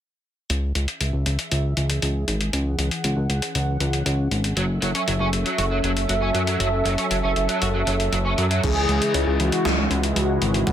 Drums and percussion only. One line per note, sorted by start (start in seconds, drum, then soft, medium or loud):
0.50 closed hi-hat medium
0.75 closed hi-hat medium
0.88 closed hi-hat medium
1.01 closed hi-hat medium
1.26 closed hi-hat medium
1.39 closed hi-hat medium
1.52 closed hi-hat medium
1.77 closed hi-hat medium
1.90 closed hi-hat medium
2.02 closed hi-hat medium
2.28 closed hi-hat medium
2.41 closed hi-hat medium
2.53 closed hi-hat medium
2.79 closed hi-hat medium
2.91 closed hi-hat medium
3.04 closed hi-hat medium
3.30 closed hi-hat medium
3.42 closed hi-hat medium
3.55 closed hi-hat medium
3.80 closed hi-hat medium
3.93 closed hi-hat medium
4.06 closed hi-hat medium
4.31 closed hi-hat medium
4.44 closed hi-hat medium
4.57 closed hi-hat medium
4.82 closed hi-hat medium
4.95 closed hi-hat medium
5.08 closed hi-hat medium
5.33 closed hi-hat medium
5.46 closed hi-hat medium
5.58 closed hi-hat medium
5.84 closed hi-hat medium
5.97 closed hi-hat medium
6.09 closed hi-hat medium
6.35 closed hi-hat medium
6.47 closed hi-hat medium
6.60 closed hi-hat medium
6.86 closed hi-hat medium
6.98 closed hi-hat medium
7.11 closed hi-hat medium
7.36 closed hi-hat medium
7.49 closed hi-hat medium
7.62 closed hi-hat medium
7.87 closed hi-hat medium
8.00 closed hi-hat medium
8.13 closed hi-hat medium
8.38 closed hi-hat medium
8.51 closed hi-hat medium
8.64 kick loud
8.64 closed hi-hat medium
8.64 crash medium
8.89 closed hi-hat medium
9.02 closed hi-hat medium
9.14 closed hi-hat loud
9.40 closed hi-hat medium
9.52 closed hi-hat medium
9.65 snare loud
9.65 closed hi-hat medium
9.91 closed hi-hat medium
10.03 closed hi-hat medium
10.16 closed hi-hat medium
10.42 closed hi-hat medium
10.54 closed hi-hat medium
10.67 kick loud
10.67 closed hi-hat loud